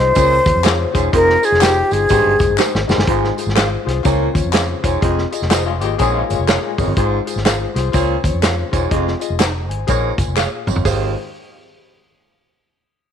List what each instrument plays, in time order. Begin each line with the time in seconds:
Already playing: grand piano G#4
0.00 fingered electric bass C2, grand piano C5, vibraphone C5, flute C5
0.15 fingered electric bass C#2, baritone saxophone A#2, grand piano C#3 C#4 F4 G#4 C5, kick, closed hi-hat, tambourine
0.44 fingered electric bass D#2, grand piano C#4 F4 G#4 C5, kick, closed hi-hat, tambourine
0.56 fingered electric bass F2
0.63 grand piano C#4 F4 G#4 C5, clean electric guitar G#4 C5 F5, snare, clap, closed hi-hat, tambourine
0.93 fingered electric bass E1, baritone saxophone G#2, grand piano C#4 F4 G#4 C5, kick, closed hi-hat, tambourine
1.12 fingered electric bass F1, baritone saxophone F2, grand piano D#4 F4 G#4 C5, flute A#4, vibraphone A#4, kick, closed hi-hat, tambourine
1.29 snare
1.42 grand piano D#4 F4 G#4 C5, vibraphone G#4, flute G#4, closed hi-hat, tambourine
1.52 fingered electric bass F1, snare
1.61 grand piano D#4 F4 G#4 C5, clean electric guitar D#4 G#4 C5, flute G4, vibraphone G4, snare, clap, closed hi-hat, tambourine
1.90 fingered electric bass G1, grand piano D#4 F4 G#4 C5, vibraphone G#4, flute G#4, closed hi-hat, tambourine
2.09 fingered electric bass G#1, baritone saxophone G2, grand piano G#2 D#4 G4 G#4 C5, kick, closed hi-hat, tambourine
2.25 fingered electric bass G1
2.39 fingered electric bass F1, grand piano D#4 G4 G#4 C5, kick, closed hi-hat, tambourine
2.50 fingered electric bass G1
2.57 grand piano D#4 G4 G#4 C5, clean electric guitar D#4 G4 C5, snare, clap, tambourine
2.75 fingered electric bass G#1, snare
2.88 fingered electric bass F#1, baritone saxophone G#2, grand piano D#4 G4 G#4 C5, snare, tambourine
2.98 fingered electric bass G1, snare
3.07 fingered electric bass G#1, grand piano G#2 F4 G#4 C5, baritone saxophone G#2, kick, closed hi-hat
3.24 snare
3.37 grand piano F4 G#4 C5, closed hi-hat, tambourine
3.47 fingered electric bass G#1, snare
3.55 grand piano F4 G#4 C5, clean electric guitar G#4 C5 F5, snare, clap, closed hi-hat, tambourine
3.85 fingered electric bass C2, grand piano F4 G#4 C5, snare, closed hi-hat
4.03 fingered electric bass C#2, baritone saxophone A#2, grand piano C#3 F4 C5 C#5, kick, closed hi-hat, tambourine
4.34 fingered electric bass D#2, grand piano F4 C5 C#5, kick, closed hi-hat, tambourine
4.45 fingered electric bass F2
4.52 grand piano F4 C5 C#5, clean electric guitar G#4 C5 F5, snare, clap, closed hi-hat, tambourine
4.82 fingered electric bass E1, baritone saxophone G#2, grand piano F4 C5 C#5, kick, closed hi-hat, tambourine
5.01 fingered electric bass F1, baritone saxophone F2, grand piano F4 G#4 D#5, kick, closed hi-hat
5.18 snare
5.31 grand piano F4 G#4 D#5, closed hi-hat, tambourine
5.42 fingered electric bass F1, snare
5.50 clean electric guitar D#4 G#4 C5, grand piano F4 G#4 D#5, snare, clap, closed hi-hat, tambourine
5.66 clean electric guitar G#3 F4
5.80 fingered electric bass G#1, clean electric guitar A#3 G4, grand piano F4 G#4 D#5, closed hi-hat, tambourine
5.98 fingered electric bass A#1, baritone saxophone G#2, grand piano A#2 G#4 A#4 C#5, clean electric guitar C4 G#4, kick, closed hi-hat, tambourine
6.14 clean electric guitar G#3 F4
6.29 fingered electric bass G1, grand piano G#4 A#4 C#5, closed hi-hat, tambourine
6.39 fingered electric bass F1
6.48 grand piano G#4 A#4 C#5, clean electric guitar G#4 C#5 F5, snare, clap, closed hi-hat, tambourine
6.78 fingered electric bass G#1, baritone saxophone F2, grand piano G#4 A#4 C#5, kick, open hi-hat, tambourine
6.87 fingered electric bass G1
6.96 fingered electric bass G#1, grand piano G#2 F4 G#4 C5, baritone saxophone G#2, kick, closed hi-hat
7.25 grand piano F4 G#4 C5, closed hi-hat, tambourine
7.36 fingered electric bass G#1, snare
7.44 grand piano F4 G#4 C5, clean electric guitar G#4 C5 F5, snare, clap, closed hi-hat, tambourine
7.74 fingered electric bass C2, grand piano F4 G#4 C5, snare, closed hi-hat, tambourine
7.92 fingered electric bass C#2, baritone saxophone A#2, grand piano C#3 F4 C5 C#5, kick, closed hi-hat, tambourine
8.23 fingered electric bass D#2, grand piano F4 C5 C#5, kick, closed hi-hat, tambourine
8.34 fingered electric bass F2
8.42 grand piano F4 C5 C#5, clean electric guitar G#4 C5 F5, snare, clap, closed hi-hat, tambourine
8.72 fingered electric bass E1, baritone saxophone G#2, grand piano F4 C5 C#5, kick, closed hi-hat, tambourine
8.90 fingered electric bass F1, baritone saxophone F2, grand piano F4 G#4 D#5, kick, closed hi-hat
9.07 snare
9.20 grand piano F4 G#4 D#5, closed hi-hat, tambourine
9.30 fingered electric bass F1
9.39 clean electric guitar D#4 G#4 C5, grand piano A#5, snare, clap, closed hi-hat, tambourine
9.69 fingered electric bass G#1, grand piano C5 G#5, closed hi-hat
9.87 fingered electric bass A#1, baritone saxophone G#2, grand piano A#2 G#4 A#4 C#5, kick, closed hi-hat, tambourine
10.18 fingered electric bass G1, grand piano C5 G#5, kick, closed hi-hat, tambourine
10.27 fingered electric bass F1
10.37 clean electric guitar G#4 C#5 F5, grand piano G#4 F5, snare, clap, tambourine
10.67 fingered electric bass G#1, baritone saxophone F2, grand piano F4 C#5, mid tom, tambourine
10.76 fingered electric bass G1, floor tom
10.85 grand piano G#1 F4 G#4 C5, fingered electric bass G#1, baritone saxophone D#2, clean electric guitar G#4 C5 F5, kick, open hi-hat, tambourine